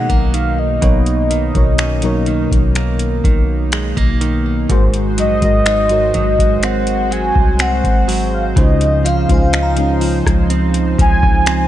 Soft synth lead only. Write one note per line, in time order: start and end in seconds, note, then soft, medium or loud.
0.00 0.34 F#5 loud
0.34 0.60 F5 loud
0.59 3.49 D#5 loud
4.71 4.85 C5 medium
5.19 6.66 D#5 loud
6.64 7.14 F#5 loud
7.12 7.63 G#5 loud
7.61 8.33 F#5 loud
8.34 8.45 F5 medium
8.58 9.09 D#5 loud
9.07 10.51 F5 loud
11.01 11.68 G#5 loud